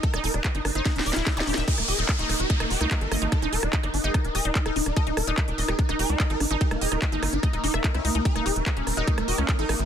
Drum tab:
CC |------------------------------------------------|x-----------------------------------------------|------------------------------------------------|------------------------------------------------|
HH |x--x--o--x--x--x--o--x--x--x--o--x--x--x--o--x--|x--x--o--x--x--x--o--x--x--x--o--x--x--x--o--x--|x--x--o--x--x--x--o--x--x--x--o--x--x--x--o--x--|x--x--o--x--x--x--o--x--x--x--o--x--x--x--o--x--|
CP |------------x-----------------------x-----------|------------x-----------------------x-----------|------------x-----------------------x-----------|------------x-----------------------x-----------|
SD |---r-----r--------r-----o---o---o---o---o---o---|---r--------r-----r--------r-----r--------r-----|r--------r-----r--------r-----r--------r-----r--|------r-----r--------r-----r--------r-----r-----|
BD |o-----------o-----------o-----------o-----------|o-----------o-----------o-----------o-----------|o-----------o-----------o-----------o-----------|o-----------o-----------o-----------o-----------|

CC |------------------------------------------------|------------------------------------------------|
HH |x--x--o--x--x--x--o--x--x--x--o--x--x--x--o--x--|x--x--o--x--x--x--o--x--x--x--o--x--x--x--o--x--|
CP |------------x-----------------------x-----------|------------x-----------------------x-----------|
SD |---r-----r--------r-----r--------r-----r--------|---r--------r-----r--------r-----r--------r-----|
BD |o-----------o-----------o-----------o-----------|o-----------o-----------o-----------o-----------|